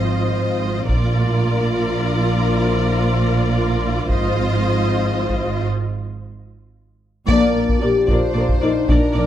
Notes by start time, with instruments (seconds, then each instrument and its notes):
Already playing: double bass section G#1, cello section G#2, french horn section F3 C4, viola section F4, violin section C5 D#5
0.88 double bass section A#1, cello section A#2, french horn section F3 D4, viola section F4, violin section A#4 D5, taiko
4.08 double bass section G#1, cello section G#2, french horn section F3 C4, viola section F4, violin section C5 D#5, taiko
5.29 taiko
7.27 double bass section A#1, cello section A#2, trombone section F3 D4, french horn section A#3, viola section A#4 D5, violin section D5, taiko
7.55 double bass section A#1, cello section A#2, viola section A#4 D5, violin section D5
7.69 taiko
7.79 double bass section A#1, cello section A#2, french horn section G4, viola section A#4 D5, violin section D5
8.07 double bass section A#1, cello section A#2, french horn section F4, viola section A#4 D5, violin section C5 D5, taiko
8.34 double bass section A#1, cello section A#2, viola section A#4 D5, violin section D5
8.49 taiko
8.61 double bass section A#1, cello section A#2, french horn section D#4, viola section A#4 D5, violin section D5
8.87 double bass section A#1, cello section A#2, french horn section D4, violin section A#4 D5, viola section A#4 D5, taiko
9.14 double bass section A#1, cello section A#2, viola section A#4 D5, violin section D5